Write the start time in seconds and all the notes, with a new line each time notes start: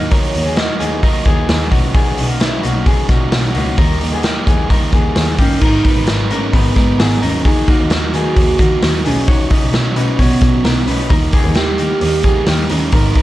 Already playing: D#2 F#3 A#3 D#4 F#4 D#5
0.11 D#3 F#3 A#3 D#4 A#4 C#5, kick, hi-hat pedal, open hi-hat
0.34 D#2 F#3 A#3 D#4, hi-hat pedal, open hi-hat
0.46 B3 G#4
0.56 D#3 F#3 A#3 F#4 D#5, snare, hi-hat pedal, open hi-hat
0.61 D#4
0.80 D#2 F#3 A#3 B3 D#4 G#4, hi-hat pedal, open hi-hat
1.01 D#3 F#3 A#3 D#4 A#4 D#5, kick, hi-hat pedal, open hi-hat
1.25 D#2 F#3 A#3 B3 D#4 G#4, kick, hi-hat pedal, open hi-hat
1.48 D#2 D#3 F#3 A#3 D#4, snare, hi-hat pedal, open hi-hat
1.71 B1 F#3 B3 C#4 D#4 F#4, kick, hi-hat pedal, open hi-hat
1.94 B2 D#3 F#3 B3 C#4 D#4 G#4, kick, hi-hat pedal, open hi-hat
2.18 B1 F#3 C#4 D#4, hi-hat pedal, open hi-hat
2.29 A#3 F#4
2.40 D#3 F#3 B3 C#4 D#4 E4, snare, hi-hat pedal, open hi-hat
2.63 B1 F#3 A#3 C#4 D#4 F#4, hi-hat pedal, open hi-hat
2.85 B2 D#3 F#3 B3 C#4 D#4 G#4, kick, hi-hat pedal, open hi-hat
3.09 B1 F#3 A#3 C#4 D#4 F#4, kick, snare, hi-hat pedal, open hi-hat
3.32 B1 D#3 F#3 C#4 D#4, snare, hi-hat pedal, open hi-hat
3.54 C#2 F#3 A#3 C#4 D#4 F#4, hi-hat pedal, open hi-hat
3.77 D#2 D#3 G3 A#3 D#4 A#4, kick, hi-hat pedal, open hi-hat
4.01 D#2 G3 A#3 D#4, hi-hat pedal, open hi-hat
4.13 B3 G#4
4.23 D#3 G3 A#3 D#4 G4, snare, hi-hat pedal, open hi-hat
4.47 D#2 G3 A#3 B3 D#4 G#4, kick, hi-hat pedal, open hi-hat
4.69 D#3 G3 A#3 D#4 A#4, kick, hi-hat pedal, open hi-hat
4.92 D#2 G3 A#3 B3 D#4 G#4, kick, hi-hat pedal, open hi-hat
5.16 D#2 D#3 G3 A#3 D#4, snare, hi-hat pedal, open hi-hat
5.38 G1 A#3 C#4 D#4 G4, kick, hi-hat pedal, open hi-hat
5.42 G3
5.60 G#1 G#2 D#3 G#3 B3 D#4 A#4, kick, crash
5.65 D#4 A#4
5.85 G#3 B3 D#4 A#4 B4, kick, hi-hat pedal, open hi-hat
5.96 G#1
6.07 G#1 G#2 D#3 G#3 B3 D#4 A#4, snare, hi-hat pedal, open hi-hat
6.30 G#2 B3 C#4 D#4 A#4, hi-hat pedal, open hi-hat
6.35 G#3
6.53 G#1 G#3 B3 D#4 A#4 B4, kick, hi-hat pedal, open hi-hat
6.76 G#2 G#3 B3 D#4 A#4, kick, snare, hi-hat pedal, open hi-hat
6.99 G#1 G#2 D#3 G#3 B3 D#4 G#4 A#4, snare, hi-hat pedal, open hi-hat
7.22 D#2 F#3 A#3 C#4 D#4 A#4, hi-hat pedal, open hi-hat
7.45 D#3 F#3 A#3 D#4 G#4, kick, hi-hat pedal, open hi-hat
7.68 A#3 D#4 F#4, kick, hi-hat pedal, open hi-hat
7.72 F#3
7.79 D#2
7.90 D#2 D#3 F#3 A#3 D#4 F#4, snare, hi-hat pedal, open hi-hat
8.14 D#3 F#3 A#3 B3 D#4 G#4, hi-hat pedal, open hi-hat
8.36 D#2 D#3 F#3 A#3 D#4, kick, hi-hat pedal, open hi-hat
8.58 D#3 F#3 A#3 D#4 F#4, kick, hi-hat pedal, open hi-hat
8.82 D#2 D#3 F#3 A#3 D#4 A#4, snare, hi-hat pedal, open hi-hat
9.05 B1 F#3 B3 C#4 D#4 G#4, hi-hat pedal, open hi-hat
9.28 B2 D#3 F#3 C#4 D#4 F#4 C#5, kick, hi-hat pedal, open hi-hat
9.50 F#3 C#4 D#4 F#4 D#5, kick, hi-hat pedal, open hi-hat
9.62 B1
9.73 B1 B2 D#3 F#3 C#4 D#4, snare, hi-hat pedal, open hi-hat
9.95 B2 F#3 C#4 D#4 B4, hi-hat pedal, open hi-hat
10.19 B1 D#3 F#3 B3 C#4 D#4 F#4 C#5, kick, hi-hat pedal, open hi-hat
10.41 B2 F#3 C#4 D#4, kick, snare, hi-hat pedal, open hi-hat
10.64 B1 B2 D#3 F#3 C#4 D#4 A#4, snare, hi-hat pedal, open hi-hat
10.87 B1 F#3 C#4 D#4 B4, hi-hat pedal, open hi-hat
11.10 D#2 D#3 G3 A#3 D#4 A#4, kick, hi-hat pedal, open hi-hat
11.33 G3 A#3 B3 D#4 G#4, kick, hi-hat pedal, open hi-hat
11.45 D#2
11.55 D#2 D#3 G3 A#3 D#4 G4, snare, hi-hat pedal, open hi-hat
11.78 D#3 G3 A#3 D#4 G4, hi-hat pedal, open hi-hat
12.01 D#2 D#3 G3 A#3, hi-hat pedal, open hi-hat
12.05 D#4
12.23 D#3 A#3 B3 D#4 G#4, kick, hi-hat pedal, open hi-hat
12.28 G3
12.46 D#2 D#3 G3 A#3 D#4 G4, snare, hi-hat pedal, open hi-hat
12.69 D#2 G3 A#3 C#4 D#4 A#4, hi-hat pedal, open hi-hat
12.92 G#1 G#2 D#3 G#3 B3 D#4 A#4, kick, hi-hat pedal, open hi-hat
13.15 G#3 B3 D#4 A#4 B4, kick, hi-hat pedal, open hi-hat